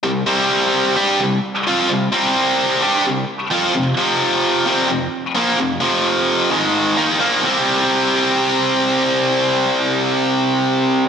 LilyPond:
\new Staff \with { instrumentName = "Distorted electric guitar" } { \clef bass \time 4/4 \key c \minor \tempo 4 = 130 <c g>8 <c g c'>4. <g d' g'>8 <c g>8 r8 <f c' f'>8 | <c g>8 <c g c'>4. <g d' g'>8 <c g>8 r8 <f c' f'>8 | <f, c>8 <f, c f>4. <c g c'>8 <f, c>8 r8 <bes, f bes>8 | <f, c>8 <f, c f>4. <aes, ees aes>4 <ees bes ees'>8 <bes, f bes>8 |
<c g c'>1~ | <c g c'>1 | }